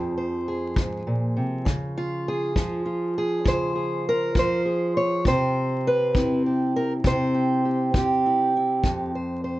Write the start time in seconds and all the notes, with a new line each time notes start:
Already playing: F2 F3 G#4 C5
0.18 C5
0.48 G#4
0.76 G#2, kick
1.07 A#2
1.37 C3
1.65 C#3, kick
1.97 F4
2.28 G#4
2.56 F3 F4, kick
2.86 F4
3.18 G#4
3.44 C#3 C5, kick
3.75 G#4
4.09 A#4
4.35 F3 C5, kick
4.65 G#4
4.97 C#5
5.25 C3 C5, kick
5.87 B4
6.15 C4 E4, kick
6.46 G4
6.76 A#4
7.04 C3 C5, kick
7.34 G4
7.65 G4
7.94 C4 G4, kick
8.26 E4
8.56 E4
8.84 F2, kick
9.15 C5
9.44 C5